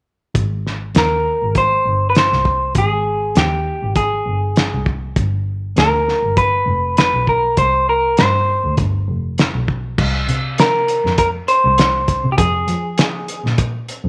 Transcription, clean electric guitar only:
0.98 A#4
1.58 C5
2.10 B4
2.18 C5
2.78 G#4
3.37 G4
3.96 G#4
5.79 A#4
6.38 B4
6.98 B4
7.29 A#4
7.58 C5
7.89 A#4
8.19 C5
10.60 A#4
11.19 A#4
11.48 C5
12.32 G4
12.38 G#4

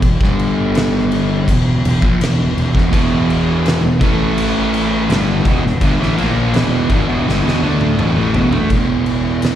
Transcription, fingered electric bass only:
Already playing: E1
0.20 G1
1.47 E1
1.85 E1
2.02 A#1
2.22 E1
2.57 E1
2.75 E1
2.93 E1
3.82 E1
4.01 A1
5.09 G1
5.45 E1
5.62 E1
5.82 G1
6.00 A1
6.18 A#1
6.53 E1
6.90 G1
7.08 E1
7.27 G1
7.45 E1
7.62 D2
7.98 E1
8.17 A1
8.35 E1
8.52 D2
8.70 E1

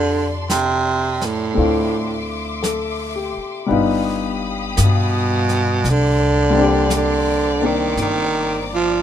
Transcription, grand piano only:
Already playing: F3 C4 D4 F4 G4 A4 A#4
1.54 A3 C4 D4 E4
1.59 F4
2.63 A4
3.15 G4
3.66 G3 B3 D4 D#4
3.71 F4
6.50 G3 A#3
6.56 C4 D4
6.61 G4
7.60 A#3 C4 D4

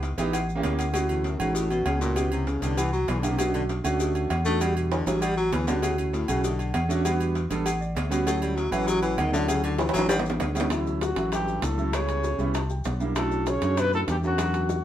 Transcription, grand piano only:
0.18 B3 D#4 E4 G4
0.55 A#3 C#4 E4 G4
0.93 A3 C#4 E4 F#4
1.38 A3 C#4 E4 F#4
2.00 A3 C#4 E4 F#4
2.15 B3 C#4 E4 G4
2.61 B3 C#4 E4 G4
3.22 A#3 D4 E4 G4
3.38 A3 C#4 D4 F#4
3.84 A3 C#4 D4 F#4
4.44 A3 C#4 D4 F#4
4.60 G3 A3 D4 F#4
5.06 G3 A3 D4 G4
5.67 G3 B3 C#4 F#4
5.82 A3 C#4 E4 F#4
6.29 A3 C#4 E4 F#4
6.89 A3 C#4 D4 F#4
7.05 G3 B3 D4 F#4
7.50 G3 B3 D4 A4
7.81 D5
7.95 E5
8.10 G3 B3 C#4 F#4 F#5
8.25 F#3 A3 C#4 E4
8.71 F#3 A3 C#4 E4
9.32 F#3 A3 C#4 E4
9.47 F#3 A3 C#4 E4
9.94 F#3 A3 C#4 E4
10.54 G3 B3 C#4 E4
10.70 F#3 A3 C#4 E4
11.16 F#3 A3 C#4 E4
11.77 F#3 A3 C#4 E4
11.92 G3 B3 C#4 E4
12.38 G3 B3 C#4 E4 B5
12.54 A5
12.70 G5
12.86 F#5
13.00 G3 A#3 D4 E4 E5
13.15 A3 C#4 D4 F#4
13.62 A3 C#4 D4 F#4
14.22 A3 C#4 D4 F#4
14.37 F#3 A3 D4 F#4

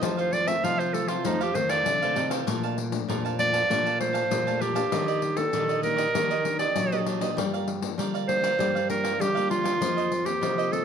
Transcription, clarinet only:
0.19 C5
0.33 D5
0.47 E5
0.64 F5
0.79 C5
0.93 A4
1.09 F4
1.26 D#4
1.42 G4
1.55 C5
1.70 D5
3.39 D5
4.00 C5
4.62 G4
5.37 A4
5.83 A#4
6.59 D5
8.28 C5
8.90 A#4
9.21 G4
9.50 F4
10.26 G4
10.72 A4

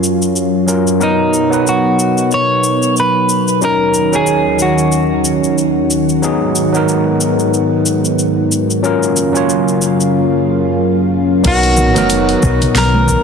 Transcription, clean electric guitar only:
1.03 D#4
1.69 F#4
2.34 C#5
3.00 B4
3.65 A#4
4.16 G#4
4.62 F#4
11.47 F#4
12.78 A#4

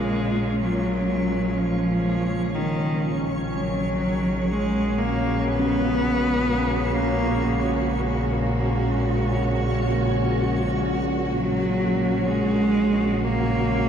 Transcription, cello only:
Already playing: G#3
0.62 F#3
1.58 F3
2.55 D#3
3.52 F#3
4.52 G#3
4.99 A#3
5.48 B3
6.94 A#3
11.34 F#3
12.27 G#3
13.23 A#3

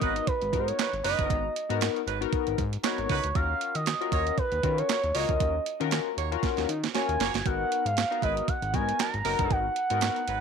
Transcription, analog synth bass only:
0.02 G#1
0.42 G#1
0.53 G#2
0.93 G#1
1.05 F#1
1.19 G1
1.30 G#1
1.70 G#2
2.07 G#1
2.47 G#1
2.58 G#2
2.98 G#1
3.10 C#2
3.24 D2
3.35 D#2
3.75 D#3
4.12 D#2
4.52 D#2
4.64 D#3
5.04 D#2
5.15 C#2
5.29 D2
5.40 D#2
5.81 D#3
6.17 D#2
6.58 D#2
6.69 D#3
7.09 D#2
7.20 F#1
7.34 G1
7.46 G#1
7.85 G#2
8.23 G#1
8.62 G#1
8.74 G#2
9.14 G#1
9.25 F#1
9.39 G1
9.51 G#1
9.91 G#2
10.28 G#1

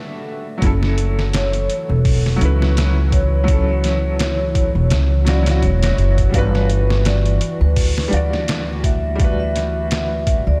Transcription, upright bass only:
0.62 F#1
1.89 E1
2.41 C#2
4.75 E1
4.91 C#2
5.63 E1
5.98 F#1
6.34 G1
7.61 D2
8.12 D2
10.47 D2

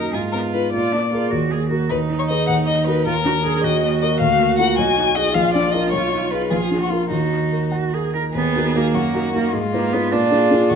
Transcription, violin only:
Already playing: A#4
0.13 G#4
0.32 A#4
0.53 B4
0.73 D5
1.89 B4
2.19 C#5
2.29 D#5
2.47 F#5
2.67 D#5
2.87 B4
3.06 A#4
3.63 D#5
4.02 D#5
4.20 F5
4.58 F#5
4.78 G#5
5.15 D#5
5.34 F5
5.54 D5
5.72 D#5
5.91 C#5
6.31 B4
6.51 G#4
6.82 F#4
6.90 F4
7.10 D#4
8.34 G#4
8.94 F#4
9.53 F4
10.12 F4
10.69 F#4

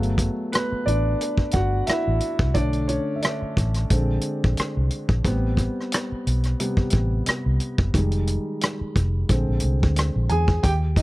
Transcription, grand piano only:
Already playing: F#3 A3 B3
0.52 B3 B4
0.86 D4 D5
1.53 F#4 F#5
1.87 E4 E5
2.54 D3 A3 D4 C#5 D5
2.88 C#4 C#5
3.16 E5
3.23 D4 D5
3.90 D3 G#3 C4
5.24 G3 B3 C4
6.60 C3 G3 B3
7.94 D#3 G3 G#3
9.29 D3 G#3 C4
10.30 G#4 G#5
10.63 G4 G5
10.97 D#5

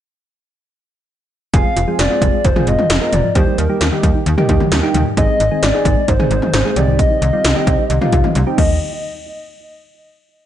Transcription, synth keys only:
1.54 G#3 C4 F4 G#4
1.88 G#3 C4 F4 G#4
2.10 G#3 C4 F4 G#4
2.56 G#3 C4 F4 G#4
3.01 G#3 C4 F4 A#4
3.35 G3 A#3 D#4 G4
3.69 G3 A#3 D#4 G4
3.92 G3 A#3 D#4 G4
4.38 G3 A#3 D#4 G4
4.83 G3 A#3 D#4 G4
5.17 G#3 C4 D#4 G#4
5.51 G#3 C4 D#4 G#4
5.74 G#3 C4 D#4 G#4
6.19 G#3 C4 D#4 G#4
6.65 G#3 C4 D#4 G#4
6.76 G3 C4 D#4 G4
7.33 G3 C4 D#4 F4
7.56 G3 C4 D#4 G4
8.01 G3 C4 D#4 F4
8.47 G3 C4 D#4 G4

